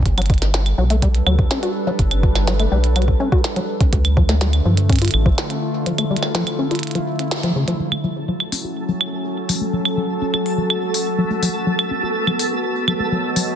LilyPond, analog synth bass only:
\new Staff \with { instrumentName = "Analog synth bass" } { \clef bass \time 4/4 \key fis \phrygian \tempo 4 = 124 g,,4. b,,4 d,8 r4 | g,,4. b,,4 r4. | d,4. g,4 a,,8 r4 | r1 |
r1 | r1 | r1 | }